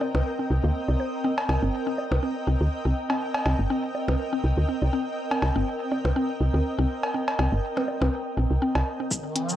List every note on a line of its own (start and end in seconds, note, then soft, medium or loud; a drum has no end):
0.00 9.56 C4 medium
0.00 0.05 C4 loud
0.00 9.56 A#4 medium
0.00 9.56 D#5 medium
0.00 9.56 G5 medium
0.00 low woodblock medium
0.15 0.22 C2 medium
0.15 percussion blips medium
0.39 0.45 C4 medium
0.50 0.59 C2 loud
0.64 0.71 D2 loud
0.64 0.67 A#3 medium
0.88 0.96 C2 medium
0.88 low woodblock medium
1.00 1.04 C5 medium
1.24 1.31 C4 loud
1.38 cowbell medium
1.49 1.57 C2 loud
1.49 cowbell medium
1.62 1.69 G1 medium
1.62 1.68 C4 medium
1.87 1.92 C4 loud
1.98 low woodblock medium
2.11 2.19 C2 medium
2.11 percussion blips medium
2.23 2.29 C4 medium
2.47 2.56 C2 loud
2.47 2.54 C4 loud
2.61 2.68 D2 loud
2.85 2.92 C2 loud
2.85 2.90 C4 medium
3.10 3.15 C4 loud
3.10 cowbell medium
3.34 cowbell medium
3.46 3.54 C2 loud
3.46 3.52 C4 medium
3.46 cowbell medium
3.46 low woodblock soft
3.59 3.66 G1 medium
3.70 3.76 C4 loud
3.95 low woodblock medium
4.08 4.15 C2 medium
4.08 4.13 C4 medium
4.08 percussion blips medium
4.33 4.38 C4 loud
4.44 4.52 C2 loud
4.57 4.64 D2 loud
4.69 4.75 C4 medium
4.82 4.89 C2 loud
4.82 low woodblock medium
4.93 4.99 C4 loud
5.31 5.36 C4 medium
5.31 cowbell medium
5.42 5.51 C2 loud
5.42 cowbell medium
5.56 5.63 G1 medium
5.56 5.61 C4 loud
5.92 5.98 C4 medium
5.92 low woodblock medium
6.05 6.12 C2 medium
6.05 percussion blips medium
6.16 6.22 C4 loud
6.41 6.49 C2 loud
6.54 6.61 D2 loud
6.54 6.59 C4 medium
6.79 6.86 C2 loud
6.79 6.84 C4 loud
7.03 cowbell medium
7.14 7.21 C4 medium
7.28 cowbell medium
7.39 7.48 C2 loud
7.39 7.45 C4 loud
7.39 cowbell medium
7.39 low woodblock soft
7.52 7.59 G1 medium
7.77 7.82 C4 medium
7.77 percussion blips medium
7.88 low woodblock medium
8.01 8.09 C2 medium
8.01 8.07 C4 loud
8.01 percussion blips medium
8.37 8.46 A#1 medium
8.37 8.44 C4 medium
8.51 8.58 C2 medium
8.62 8.68 C4 loud
8.75 8.82 C2 medium
8.75 cowbell medium
8.75 low woodblock medium
9.00 9.05 C4 medium
9.11 kick loud
9.11 riser medium
9.11 shaker medium
9.36 9.42 C4 medium
9.36 closed hi-hat medium
9.49 shaker soft